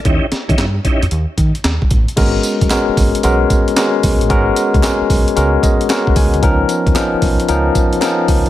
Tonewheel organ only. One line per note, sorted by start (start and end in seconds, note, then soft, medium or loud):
0.05 0.26 C#4 medium
0.05 0.27 D#4 medium
0.05 0.27 E4 medium
0.05 0.27 G4 medium
0.49 0.65 C#4 medium
0.49 0.65 D#4 medium
0.49 0.66 E4 medium
0.49 0.66 G4 medium
0.85 1.06 C#4 medium
0.85 1.06 D#4 medium
0.85 1.06 E4 medium
0.85 1.06 G4 medium